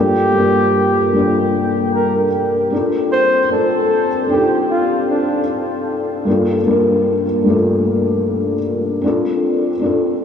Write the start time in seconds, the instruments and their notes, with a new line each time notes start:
Already playing: felt piano G2 A#3 D4, flugelhorn G4
0.00 felt piano F4 A4
0.33 felt piano G2 A#3 D4
0.37 felt piano F4 A#4
1.13 felt piano G2 A#3 D4
1.17 felt piano F4 A4
1.94 flugelhorn A#4
2.70 felt piano C4 D4
2.74 felt piano F4 A4
3.12 flugelhorn C5
3.49 felt piano C4 D4, flugelhorn A4
3.53 felt piano F4 A4
4.27 felt piano C4 D4, flugelhorn G4
4.31 felt piano D#4 A4
4.38 felt piano F4
4.70 flugelhorn F4
5.10 flugelhorn D4
6.25 felt piano G2 A#3 D4
6.30 felt piano F4 A4
6.64 felt piano G2 A#3 D4
6.69 felt piano F4 A#4
7.44 felt piano G2 A3 D4
7.48 felt piano A#3 F4 A4
9.02 felt piano C4 D4
9.06 felt piano F4 A4
9.79 felt piano C4 D4
9.83 felt piano F4 A4